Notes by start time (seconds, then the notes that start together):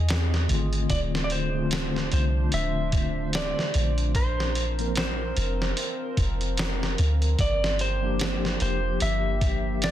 Already playing: E2 G#4 D#5
0.09 snare, open hi-hat
0.34 snare
0.48 G#1 D3 A3 C4, open hi-hat
0.52 F4
0.73 closed hi-hat
0.90 D1 F3 D4 C5 D5, kick, open hi-hat
1.15 snare
1.24 D5
1.30 C5, open hi-hat
1.53 D3 A3 C4
1.58 F4
1.71 snare, open hi-hat
1.96 snare
2.12 C2 C5, open hi-hat
2.52 D1 E5, open hi-hat
2.92 kick, open hi-hat
3.33 D5, snare, open hi-hat
3.59 snare
3.74 A#1, open hi-hat
3.98 closed hi-hat
4.15 F3 C4 A#4 C5, kick, open hi-hat
4.40 snare
4.55 open hi-hat
4.79 F3 A#3 C4 A#4, closed hi-hat
4.96 C5, snare, open hi-hat
5.37 F1, open hi-hat
5.62 snare
5.77 open hi-hat
6.17 F1, kick, open hi-hat
6.41 closed hi-hat
6.57 snare, open hi-hat
6.83 snare
6.98 D2, open hi-hat
7.22 closed hi-hat
7.39 G1 A#3 G4 D5, kick, open hi-hat
7.64 snare
7.79 C5, open hi-hat
8.01 F3 A#3 D4
8.06 G4
8.19 snare, open hi-hat
8.45 snare
8.60 F1 C5, open hi-hat
9.00 G1 E5, open hi-hat
9.41 kick, open hi-hat
9.82 D5, snare, open hi-hat